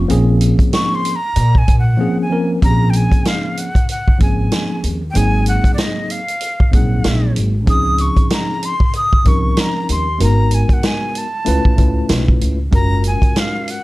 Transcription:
0.08 A#1 F3 A#3 C4 C#4 G#4, closed hi-hat
0.41 closed hi-hat
0.59 kick, closed hi-hat
0.73 C#6, snare, closed hi-hat
0.95 C6
1.05 closed hi-hat
1.16 A#5
1.36 A#2, closed hi-hat
1.55 G#5, kick
1.68 A#2, kick, closed hi-hat
1.79 F#5
1.97 F3 A#3 C4 C#4 G#4
2.22 G#5
2.29 F3 A#3 C4 C#4 A#4
2.61 A#1 F3 A#3 C4 C#4 G4 A#5, kick, closed hi-hat
2.71 G#4
2.90 G5, closed hi-hat
2.96 G#5
3.12 kick, closed hi-hat
3.25 F5, snare, closed hi-hat
3.57 F#5, closed hi-hat
3.75 kick, closed hi-hat
3.89 F#5, closed hi-hat
4.08 muted upright bass stroke, kick
4.19 G#1 F3 A#3 C4 C#4 G#4 G#5, kick, closed hi-hat
4.52 snare, closed hi-hat
4.84 D#2, closed hi-hat
5.11 F#3 A#3 G5
5.15 G#1 C4 D#4 G#4 G#5, closed hi-hat
5.46 F#5, closed hi-hat
5.64 kick, closed hi-hat
5.74 D5, closed hi-hat
5.78 D#5, snare
6.10 F5, closed hi-hat
6.28 closed hi-hat
6.41 closed hi-hat
6.60 muted upright bass stroke, kick
6.71 A#1 F#3 A#3 C4 D#4 G#4 F#5, kick, closed hi-hat
7.04 A#1, snare, closed hi-hat
7.36 G#1, closed hi-hat
7.66 C#2 F3 C4 C#4 D#4 G#4 D#6, kick, closed hi-hat
7.98 C#6, closed hi-hat
8.17 kick, closed hi-hat
8.30 A#5, snare, closed hi-hat
8.63 C6, closed hi-hat
8.80 kick
8.93 D#6, closed hi-hat
9.13 muted upright bass stroke, kick
9.24 C2 F3 C4 C#4 D#4 A#4 C#6, kick, closed hi-hat
9.57 A#5, snare, closed hi-hat
9.89 D#2 C6, closed hi-hat
10.18 G#1 G#3 B3 D#4 F#4 A#4, closed hi-hat
10.23 A#5
10.51 G#5, closed hi-hat
10.69 kick, closed hi-hat
10.73 F#5
10.83 G#5, snare, closed hi-hat
11.15 A5, closed hi-hat
11.45 C#2 A3 C#4 E4 F4 B4, closed hi-hat
11.65 muted upright bass stroke, kick
11.76 C#2 A3 C#4 E4 F4 B4, kick, closed hi-hat
12.09 B1, snare, closed hi-hat
12.28 kick
12.41 C#2, closed hi-hat
12.71 F#1 G#3 C#4 F4 F#4 A#4 A#5, kick, closed hi-hat
13.04 G#5, closed hi-hat
13.22 kick, closed hi-hat
13.36 F5, snare, closed hi-hat
13.68 F#5, closed hi-hat

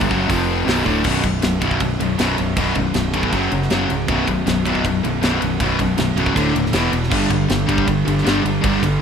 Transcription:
0.01 G1 G2 D3, kick
0.07 F#1 F#2 C#3 F#3, kick
0.27 F1 F2 C3 F3, kick, open hi-hat
0.65 B0 B1 F#2 B2, snare, open hi-hat
0.85 D1 D2 A2 D3, kick
1.04 B0 B1 F#2 B2, kick, crash
1.23 B0 B1 F#2, kick, ride
1.42 B0 B1 F#2, snare, ride
1.60 B0 B1 F#2 B2, kick, ride
1.71 kick
1.80 B0 B1 F#2, kick, ride
1.99 B0 B1 F#2 B2, ride
2.18 B0 B1 F#2 B2, snare, ride
2.24 B2
2.37 B0 B1 F#2, ride
2.56 B0 B1 F#2 B2, kick, ride
2.75 B0 B1 F#2, kick, ride
2.94 B0 B1 F#2, snare, ride
3.14 B0 B1 F#2 B2, kick, ride
3.23 kick
3.32 F#1 F#2 C#3 F#3, kick, ride
3.37 F#3
3.51 F#1 F#2 C#3, ride
3.62 snare
3.70 F#1 F#2 C#3 F#3, snare, ride
3.90 C#1 F#2 C#3, ride
4.08 B0 B1 F#2 B2, kick, ride
4.27 B0 B1 F#2, kick, ride
4.46 B0 B1 F#2, snare, ride
4.65 B0 B1 F#2 B2, kick, ride
4.75 kick
4.84 B0 B1 F#2, kick, ride
5.03 B0 B1 F#2 B2, ride
5.08 B1
5.21 B0 B1 F#2 B2, snare, ride
5.40 B0 B1 F#2, ride
5.60 B0 B1 F#2 B2, kick, ride
5.79 B0 B1 F#2, kick, ride
5.97 B0 B1 F#2, snare, ride
6.16 C#1 B1 F#2 B2, ride
6.26 kick
6.36 D1 D2 A2 D3, kick, ride
6.40 D3
6.54 D#1 D2 A2, ride
6.66 snare
6.73 E1 E2 B2 E3, snare, ride
6.91 E1 E2 B2, ride
7.04 snare
7.10 G1 G2 D3 G3, kick, crash
7.16 G3
7.29 G1 G2 D3, kick, ride
7.48 G1 G2 D3, snare, ride
7.67 G1 G2 D3 G3, kick, ride
7.78 kick
7.85 G1 G2 D3, kick, ride
8.05 G1 G2 D3 G3, ride
8.10 G2
8.18 snare
8.23 G1 G2 D3 G3, ride
8.27 D3 G3, snare
8.43 G1 G2 D3, ride
8.61 G1 G2 D3 G3, kick, ride
8.67 D3 G3
8.80 G1 G2 D3, kick, ride

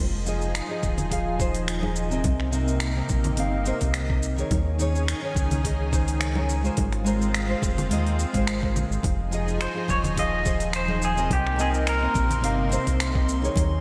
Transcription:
Already playing: F3 D#4 G#4
0.00 F1
0.25 F3 F4 G#4 D#5, shaker
0.42 shaker
0.55 finger snap, open hi-hat, shaker
0.68 F3 F4 G#4 D#5
0.83 D#1, kick, high conga, shaker
0.98 open hi-hat, low conga, shaker
1.09 F3 F4 G#4 F5, kick, open hi-hat, shaker
1.38 F3 F4 G#4 C5, kick, shaker
1.55 open hi-hat, shaker
1.68 finger snap, open hi-hat, shaker
1.81 F3 F4 G#4 D#5, high conga
1.96 shaker
2.10 C3 C4 A#4 D#5, shaker
2.24 C2 C3 A#3 D#4, kick, open hi-hat, high conga, shaker
2.40 finger snap
2.51 C3 C4 A#4 D#5, shaker
2.68 shaker
2.80 finger snap, open hi-hat, shaker
2.95 C3 C4 A#4 D#5
3.09 A#1, kick, high conga, shaker
3.24 open hi-hat, low conga, shaker
3.36 G1 C3 C4 A#4 F5, open hi-hat, shaker
3.64 C3 C4 A#4 C5, shaker
3.81 C2, kick, open hi-hat, shaker
3.94 finger snap, open hi-hat, shaker
4.08 C3 C4 A#4 D#5, kick
4.23 shaker
4.36 D#3 D#4 G#4 C#5, shaker
4.51 D#2 D#3 C#4 G#4, kick, open hi-hat, high conga, shaker
4.78 D#3 D#4 G#4 C#5, shaker
4.96 shaker
5.08 finger snap, open hi-hat, shaker
5.22 D#3 D#4 G#4 C#5
5.34 C#2, kick, high conga, shaker
5.51 open hi-hat, low conga, shaker
5.63 D#3 D#4 G#4 D#5, kick, open hi-hat, shaker
5.91 D#3 D#4 G#4 C5, kick, shaker
6.08 open hi-hat, shaker
6.21 finger snap, open hi-hat, shaker
6.35 D#3 D#4 G#4 C#5, high conga
6.49 shaker
6.63 G#3 F4 A#4 C5, shaker
6.77 G#1 G#3 C4 F4, kick, open hi-hat, high conga, shaker
6.93 finger snap, open hi-hat
7.04 G#3 F4 A#4 C5, shaker
7.22 shaker
7.34 finger snap, open hi-hat, shaker
7.47 G#3 F4 A#4 C5
7.62 F1, kick, high conga, shaker
7.78 open hi-hat, low conga, shaker
7.89 D#2 G#3 F4 A#4 D#5, open hi-hat, shaker
8.07 open hi-hat
8.19 shaker
8.33 G#1 G#3 F4 A#4 C5, kick, open hi-hat, shaker
8.47 finger snap, open hi-hat, shaker
8.61 G#3 F4 A#4 C5, kick
8.76 A#1, low conga, shaker
8.90 G#1, shaker
9.03 F1 F3 D#4 G#4 C6, kick, open hi-hat, high conga, shaker
9.31 F3 F4 G#4 D#5, shaker
9.48 shaker
9.61 C5, finger snap, open hi-hat, shaker
9.74 F3 F4 G#4 D#5
9.88 D#1 C#5, kick, high conga, shaker
10.04 open hi-hat, low conga, shaker
10.16 F3 F4 G#4 D#5 F5, kick, open hi-hat, shaker
10.44 F3 F4 G#4 C5, kick, shaker
10.60 open hi-hat, shaker
10.73 C5, finger snap, open hi-hat, shaker
10.87 F3 F4 G#4 D#5, high conga
11.02 G#4, shaker
11.16 C3 C4 A#4 D#5, shaker
11.30 C2 C3 A#3 G4, kick, open hi-hat, high conga, shaker
11.47 finger snap
11.56 C3 C4 A#4 D#5, shaker
11.61 G#4
11.74 shaker
11.87 A#4, finger snap, open hi-hat, shaker
12.01 C3 C4 A#4 D#5
12.14 A#1, kick, high conga, shaker
12.29 open hi-hat, low conga, shaker
12.41 G1 C3 C4 A#4 F5, open hi-hat, shaker
12.69 C3 C4 A#4 C5, shaker
12.87 C2, kick, open hi-hat, shaker
13.00 finger snap, open hi-hat, shaker
13.14 C3 C4 A#4 D#5, kick
13.29 shaker
13.42 D#3 D#4 G#4 C#5, shaker
13.56 D#2 D#3 C#4 G#4, kick, open hi-hat, high conga, shaker

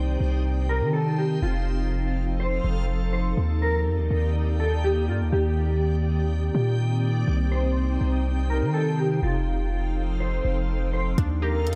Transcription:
Already playing: C2 C3 C4 D#4 G4 C5 G5
0.20 C2
0.69 A#4
0.81 D#3
0.93 A4
1.18 G4
1.42 F1 F3 D#4 F4 A4 F5
2.40 C5
2.64 F1
3.13 C5
3.37 D#2 D#3 A#3 G4 D5 G5
3.62 A#4
3.86 F2
3.98 D#2
4.11 D#2
4.60 A4
4.84 G4
5.08 G2 F4
5.20 D#2
5.32 D#2 C4 G4
6.55 A#2
7.28 C2 C3 D#4 C5 G5
7.52 C5
8.01 C2
8.50 A#4
8.62 D#3
8.74 A4
8.99 G4
9.23 F1 F3 F4 A4 F5
10.20 C5
10.45 F1
10.93 C5
11.18 D#2 D#3 A#3 D4 G4 D5 G5, kick, closed hi-hat
11.42 G4 A#4
11.67 F2, closed hi-hat

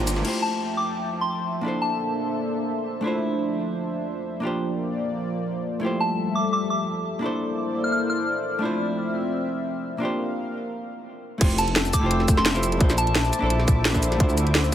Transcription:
Already playing: A#3 D4 F4 G4 C5 A#5 D6
0.00 G1
0.07 closed hi-hat, ride, shaker
0.16 snare
0.22 F3 A3 E4 F4 E5 G5 A5, crash
0.26 G4 C5
0.42 A5
0.77 D6
1.21 C6
1.61 A#3 D4 E4 A4 C5
1.66 A4 C5
1.82 A5
3.01 F3 A3 D4 E4
3.06 F4 C5
4.40 A#3 D4 F4 D5
4.45 G4 C5
5.80 G3 A3 E4 F4 A4 E5
5.85 G4 C5
6.00 A5
6.35 D6
6.53 D6
6.70 D6
7.19 A#3 D4 E4 A4 C5 D5
7.24 A4 C5
7.84 F6
7.92 F6
8.10 F6
8.59 F3 A3 C4 D4 E4 E5
8.64 F4 C5
9.98 A#3 D4 F4 A#4 F5
10.03 G4 C5
11.38 F1 A3 E4 F4 A4 G5 E6, kick, closed hi-hat, crash
11.43 G4 C5
11.50 shaker
11.58 A5, closed hi-hat, shaker
11.68 F1, closed hi-hat
11.76 snare, closed hi-hat
11.85 shaker
11.93 D6, kick, closed hi-hat, shaker
11.99 F1 A3 E4 F4
12.04 G4 C5
12.11 closed hi-hat
12.20 snare
12.28 F1, kick, closed hi-hat, shaker
12.37 C6, snare
12.46 snare, closed hi-hat
12.53 F1 A3 E4 F4 G4 C5, shaker
12.63 closed hi-hat, shaker
12.72 closed hi-hat
12.77 A#1 A#3 D4 E4 C5 E5 A5 D6, kick, closed hi-hat
12.82 A4 C5
12.90 snare, shaker
12.98 A5, closed hi-hat, shaker
13.07 A#1, closed hi-hat
13.15 snare, closed hi-hat
13.25 shaker
13.33 closed hi-hat, shaker
13.39 A#1 A#3 D4 E4
13.44 A4 C5
13.50 closed hi-hat
13.60 snare
13.68 A#1, kick, closed hi-hat, shaker
13.85 snare, closed hi-hat
13.93 A#1 A#3 D4 E4 A4 C5, kick, shaker
14.03 closed hi-hat, shaker
14.12 snare, closed hi-hat
14.17 D2 A3 D4 E4 D6, kick, closed hi-hat
14.22 F4 C5
14.29 shaker
14.38 closed hi-hat, shaker
14.47 D2, closed hi-hat
14.55 snare, closed hi-hat
14.64 shaker

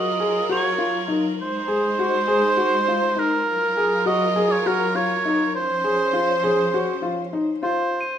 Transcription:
Already playing: F#3 F4 A#4 D#5
0.20 G#4
0.49 F#4 C#5 F7
0.57 G#7
0.78 F4
1.08 D#4
1.38 G#3 D#4 C5
1.68 G#4
1.99 F#4
2.28 G#4
2.57 F#4
2.88 F4
3.16 D#4 A#4
3.46 F#3 F4 A#4
3.77 G#4
4.06 F#4 D#5
4.36 G#4
4.51 C#5
4.66 F#4 A#4
4.95 F4 C#5
5.25 D#4
5.56 F3 C#4 C5
5.84 G#4
6.13 F4
6.44 G#4
6.74 F#4
7.02 F4
7.33 D#4
7.63 F4 C5
8.01 D#7

